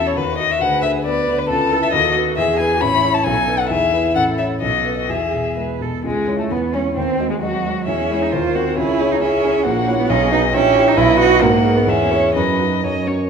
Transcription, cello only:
0, 0, Header, 1, 2, 480
1, 0, Start_track
1, 0, Key_signature, 4, "major"
1, 0, Tempo, 442152
1, 668, Time_signature, 2, 2, 24, 8
1, 4022, Tempo, 467654
1, 6427, Key_signature, 4, "minor"
1, 6902, Tempo, 452148
1, 9302, Tempo, 441826
1, 10262, Key_signature, 5, "major"
1, 12182, Tempo, 472813
1, 14087, End_track
2, 0, Start_track
2, 0, Title_t, "Cello"
2, 0, Program_c, 0, 42
2, 0, Note_on_c, 0, 69, 51
2, 180, Note_on_c, 0, 66, 49
2, 196, Note_off_c, 0, 69, 0
2, 666, Note_off_c, 0, 66, 0
2, 672, Note_on_c, 0, 71, 59
2, 1141, Note_off_c, 0, 71, 0
2, 1149, Note_on_c, 0, 71, 52
2, 1617, Note_off_c, 0, 71, 0
2, 1631, Note_on_c, 0, 69, 62
2, 2102, Note_on_c, 0, 66, 60
2, 2118, Note_off_c, 0, 69, 0
2, 2583, Note_on_c, 0, 68, 64
2, 2599, Note_off_c, 0, 66, 0
2, 3060, Note_on_c, 0, 64, 61
2, 3076, Note_off_c, 0, 68, 0
2, 3533, Note_off_c, 0, 64, 0
2, 3539, Note_on_c, 0, 63, 61
2, 4007, Note_off_c, 0, 63, 0
2, 4014, Note_on_c, 0, 64, 52
2, 4940, Note_off_c, 0, 64, 0
2, 4968, Note_on_c, 0, 66, 47
2, 5447, Note_on_c, 0, 68, 44
2, 5462, Note_off_c, 0, 66, 0
2, 5889, Note_off_c, 0, 68, 0
2, 5947, Note_on_c, 0, 71, 42
2, 6188, Note_on_c, 0, 69, 41
2, 6204, Note_off_c, 0, 71, 0
2, 6429, Note_off_c, 0, 69, 0
2, 6438, Note_on_c, 0, 56, 59
2, 6792, Note_on_c, 0, 57, 55
2, 6808, Note_off_c, 0, 56, 0
2, 6902, Note_on_c, 0, 59, 60
2, 6918, Note_off_c, 0, 57, 0
2, 7142, Note_on_c, 0, 61, 64
2, 7158, Note_off_c, 0, 59, 0
2, 7367, Note_off_c, 0, 61, 0
2, 7373, Note_on_c, 0, 60, 66
2, 7757, Note_on_c, 0, 56, 57
2, 7773, Note_off_c, 0, 60, 0
2, 7854, Note_off_c, 0, 56, 0
2, 7860, Note_on_c, 0, 54, 62
2, 8339, Note_on_c, 0, 61, 71
2, 8354, Note_off_c, 0, 54, 0
2, 8715, Note_on_c, 0, 63, 60
2, 8731, Note_off_c, 0, 61, 0
2, 8824, Note_on_c, 0, 65, 77
2, 8840, Note_off_c, 0, 63, 0
2, 9068, Note_on_c, 0, 66, 73
2, 9084, Note_off_c, 0, 65, 0
2, 9303, Note_off_c, 0, 66, 0
2, 9313, Note_on_c, 0, 64, 79
2, 9679, Note_on_c, 0, 63, 74
2, 9695, Note_off_c, 0, 64, 0
2, 9787, Note_off_c, 0, 63, 0
2, 9794, Note_on_c, 0, 61, 83
2, 10264, Note_on_c, 0, 58, 81
2, 10281, Note_off_c, 0, 61, 0
2, 10632, Note_on_c, 0, 59, 85
2, 10648, Note_off_c, 0, 58, 0
2, 10744, Note_on_c, 0, 61, 93
2, 10760, Note_off_c, 0, 59, 0
2, 10981, Note_off_c, 0, 61, 0
2, 10987, Note_on_c, 0, 63, 90
2, 11074, Note_off_c, 0, 63, 0
2, 11224, Note_on_c, 0, 61, 101
2, 11589, Note_on_c, 0, 63, 88
2, 11606, Note_off_c, 0, 61, 0
2, 11694, Note_on_c, 0, 64, 109
2, 11710, Note_off_c, 0, 63, 0
2, 11931, Note_off_c, 0, 64, 0
2, 11938, Note_on_c, 0, 66, 107
2, 12178, Note_on_c, 0, 58, 100
2, 12194, Note_off_c, 0, 66, 0
2, 12532, Note_on_c, 0, 59, 78
2, 12547, Note_off_c, 0, 58, 0
2, 12645, Note_on_c, 0, 61, 82
2, 12660, Note_off_c, 0, 59, 0
2, 13126, Note_off_c, 0, 61, 0
2, 13132, Note_on_c, 0, 54, 67
2, 13848, Note_off_c, 0, 54, 0
2, 14087, End_track
0, 0, End_of_file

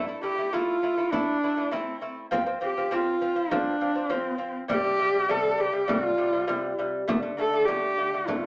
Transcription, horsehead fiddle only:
0, 0, Header, 1, 2, 480
1, 0, Start_track
1, 0, Tempo, 596421
1, 1861, Time_signature, 4, 2, 24, 8
1, 6809, End_track
2, 0, Start_track
2, 0, Title_t, "Horsehead fiddle"
2, 0, Program_c, 0, 110
2, 188, Note_on_c, 0, 67, 94
2, 428, Note_on_c, 0, 65, 89
2, 440, Note_off_c, 0, 67, 0
2, 896, Note_on_c, 0, 62, 93
2, 909, Note_off_c, 0, 65, 0
2, 1382, Note_on_c, 0, 60, 74
2, 1394, Note_off_c, 0, 62, 0
2, 1741, Note_off_c, 0, 60, 0
2, 2114, Note_on_c, 0, 67, 84
2, 2365, Note_on_c, 0, 65, 88
2, 2377, Note_off_c, 0, 67, 0
2, 2830, Note_on_c, 0, 62, 92
2, 2842, Note_off_c, 0, 65, 0
2, 3308, Note_on_c, 0, 60, 88
2, 3320, Note_off_c, 0, 62, 0
2, 3664, Note_off_c, 0, 60, 0
2, 3783, Note_on_c, 0, 67, 110
2, 4268, Note_on_c, 0, 69, 96
2, 4280, Note_off_c, 0, 67, 0
2, 4507, Note_on_c, 0, 67, 94
2, 4519, Note_off_c, 0, 69, 0
2, 4739, Note_on_c, 0, 65, 96
2, 4751, Note_off_c, 0, 67, 0
2, 5460, Note_off_c, 0, 65, 0
2, 5945, Note_on_c, 0, 69, 90
2, 6157, Note_on_c, 0, 67, 92
2, 6169, Note_off_c, 0, 69, 0
2, 6662, Note_on_c, 0, 62, 66
2, 6674, Note_off_c, 0, 67, 0
2, 6728, Note_on_c, 0, 65, 67
2, 6740, Note_off_c, 0, 62, 0
2, 6809, Note_off_c, 0, 65, 0
2, 6809, End_track
0, 0, End_of_file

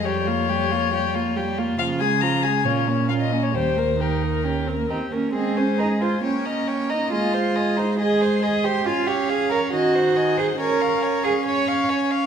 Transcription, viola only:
0, 0, Header, 1, 2, 480
1, 0, Start_track
1, 0, Key_signature, -4, "major"
1, 0, Tempo, 434153
1, 55, Time_signature, 4, 2, 24, 8
1, 3415, Tempo, 446761
1, 8215, Tempo, 434153
1, 13419, End_track
2, 0, Start_track
2, 0, Title_t, "Viola"
2, 0, Program_c, 0, 41
2, 56, Note_on_c, 0, 55, 36
2, 306, Note_on_c, 0, 58, 35
2, 323, Note_off_c, 0, 55, 0
2, 549, Note_on_c, 0, 55, 35
2, 566, Note_off_c, 0, 58, 0
2, 792, Note_on_c, 0, 58, 36
2, 808, Note_off_c, 0, 55, 0
2, 1029, Note_off_c, 0, 58, 0
2, 1034, Note_on_c, 0, 55, 37
2, 1271, Note_on_c, 0, 58, 38
2, 1288, Note_off_c, 0, 55, 0
2, 1506, Note_on_c, 0, 55, 36
2, 1523, Note_off_c, 0, 58, 0
2, 1750, Note_on_c, 0, 58, 39
2, 1767, Note_off_c, 0, 55, 0
2, 1980, Note_off_c, 0, 58, 0
2, 1987, Note_on_c, 0, 53, 39
2, 2222, Note_on_c, 0, 56, 34
2, 2238, Note_off_c, 0, 53, 0
2, 2462, Note_on_c, 0, 53, 35
2, 2479, Note_off_c, 0, 56, 0
2, 2698, Note_on_c, 0, 56, 33
2, 2715, Note_off_c, 0, 53, 0
2, 2934, Note_off_c, 0, 56, 0
2, 2939, Note_on_c, 0, 61, 32
2, 3177, Note_on_c, 0, 58, 30
2, 3194, Note_off_c, 0, 61, 0
2, 3414, Note_on_c, 0, 61, 28
2, 3430, Note_off_c, 0, 58, 0
2, 3655, Note_on_c, 0, 58, 26
2, 3671, Note_off_c, 0, 61, 0
2, 3896, Note_off_c, 0, 58, 0
2, 3903, Note_on_c, 0, 55, 27
2, 4143, Note_on_c, 0, 58, 26
2, 4159, Note_off_c, 0, 55, 0
2, 4376, Note_off_c, 0, 58, 0
2, 4382, Note_on_c, 0, 63, 37
2, 4873, Note_on_c, 0, 61, 33
2, 4889, Note_off_c, 0, 63, 0
2, 5112, Note_on_c, 0, 60, 30
2, 5129, Note_off_c, 0, 61, 0
2, 5234, Note_off_c, 0, 60, 0
2, 5245, Note_on_c, 0, 58, 27
2, 5354, Note_off_c, 0, 58, 0
2, 5360, Note_on_c, 0, 60, 32
2, 5595, Note_off_c, 0, 60, 0
2, 5606, Note_on_c, 0, 58, 28
2, 5838, Note_off_c, 0, 58, 0
2, 5844, Note_on_c, 0, 56, 37
2, 6753, Note_off_c, 0, 56, 0
2, 6796, Note_on_c, 0, 58, 35
2, 7744, Note_on_c, 0, 56, 44
2, 7760, Note_off_c, 0, 58, 0
2, 9653, Note_off_c, 0, 56, 0
2, 9659, Note_on_c, 0, 61, 42
2, 10616, Note_on_c, 0, 51, 46
2, 10632, Note_off_c, 0, 61, 0
2, 11573, Note_off_c, 0, 51, 0
2, 11579, Note_on_c, 0, 61, 49
2, 13419, Note_off_c, 0, 61, 0
2, 13419, End_track
0, 0, End_of_file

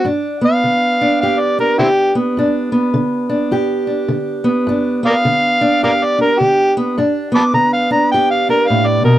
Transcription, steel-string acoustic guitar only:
0, 0, Header, 1, 2, 480
1, 0, Start_track
1, 0, Tempo, 575264
1, 46, Time_signature, 4, 2, 24, 8
1, 7666, End_track
2, 0, Start_track
2, 0, Title_t, "Steel-string acoustic guitar"
2, 0, Program_c, 0, 25
2, 37, Note_on_c, 0, 43, 61
2, 43, Note_on_c, 0, 62, 57
2, 345, Note_on_c, 0, 59, 54
2, 485, Note_off_c, 0, 43, 0
2, 531, Note_on_c, 0, 50, 61
2, 842, Note_off_c, 0, 62, 0
2, 845, Note_on_c, 0, 62, 57
2, 972, Note_off_c, 0, 50, 0
2, 1026, Note_on_c, 0, 43, 57
2, 1028, Note_on_c, 0, 67, 58
2, 1319, Note_off_c, 0, 62, 0
2, 1323, Note_on_c, 0, 62, 50
2, 1460, Note_off_c, 0, 43, 0
2, 1493, Note_on_c, 0, 50, 53
2, 1792, Note_off_c, 0, 59, 0
2, 1795, Note_on_c, 0, 59, 57
2, 1933, Note_off_c, 0, 50, 0
2, 1978, Note_on_c, 0, 43, 62
2, 1987, Note_off_c, 0, 62, 0
2, 1990, Note_on_c, 0, 62, 57
2, 2266, Note_off_c, 0, 59, 0
2, 2270, Note_on_c, 0, 59, 60
2, 2416, Note_off_c, 0, 43, 0
2, 2451, Note_on_c, 0, 50, 68
2, 2745, Note_off_c, 0, 62, 0
2, 2749, Note_on_c, 0, 62, 56
2, 2892, Note_off_c, 0, 50, 0
2, 2931, Note_on_c, 0, 43, 57
2, 2933, Note_off_c, 0, 67, 0
2, 2936, Note_on_c, 0, 67, 63
2, 3226, Note_off_c, 0, 62, 0
2, 3229, Note_on_c, 0, 62, 47
2, 3373, Note_off_c, 0, 43, 0
2, 3408, Note_on_c, 0, 50, 61
2, 3702, Note_off_c, 0, 59, 0
2, 3706, Note_on_c, 0, 59, 62
2, 3851, Note_off_c, 0, 50, 0
2, 3895, Note_on_c, 0, 43, 71
2, 3908, Note_off_c, 0, 62, 0
2, 3911, Note_on_c, 0, 62, 54
2, 4193, Note_off_c, 0, 59, 0
2, 4197, Note_on_c, 0, 59, 59
2, 4334, Note_off_c, 0, 43, 0
2, 4380, Note_on_c, 0, 50, 76
2, 4679, Note_off_c, 0, 62, 0
2, 4683, Note_on_c, 0, 62, 54
2, 4816, Note_off_c, 0, 50, 0
2, 4865, Note_on_c, 0, 43, 63
2, 4866, Note_off_c, 0, 67, 0
2, 4869, Note_on_c, 0, 67, 62
2, 5150, Note_off_c, 0, 62, 0
2, 5160, Note_on_c, 0, 62, 47
2, 5299, Note_off_c, 0, 43, 0
2, 5344, Note_on_c, 0, 50, 64
2, 5626, Note_off_c, 0, 59, 0
2, 5648, Note_on_c, 0, 59, 59
2, 5778, Note_off_c, 0, 50, 0
2, 5797, Note_off_c, 0, 62, 0
2, 5801, Note_off_c, 0, 59, 0
2, 5820, Note_on_c, 0, 43, 66
2, 5826, Note_on_c, 0, 62, 55
2, 6106, Note_on_c, 0, 59, 54
2, 6255, Note_off_c, 0, 43, 0
2, 6288, Note_on_c, 0, 50, 69
2, 6584, Note_off_c, 0, 62, 0
2, 6597, Note_on_c, 0, 62, 54
2, 6728, Note_off_c, 0, 50, 0
2, 6791, Note_off_c, 0, 67, 0
2, 6793, Note_on_c, 0, 43, 59
2, 6794, Note_on_c, 0, 67, 62
2, 7065, Note_off_c, 0, 62, 0
2, 7083, Note_on_c, 0, 62, 47
2, 7220, Note_off_c, 0, 43, 0
2, 7261, Note_on_c, 0, 45, 65
2, 7539, Note_off_c, 0, 45, 0
2, 7542, Note_on_c, 0, 47, 63
2, 7666, Note_off_c, 0, 47, 0
2, 7666, Note_off_c, 0, 59, 0
2, 7666, Note_off_c, 0, 62, 0
2, 7666, Note_off_c, 0, 67, 0
2, 7666, End_track
0, 0, End_of_file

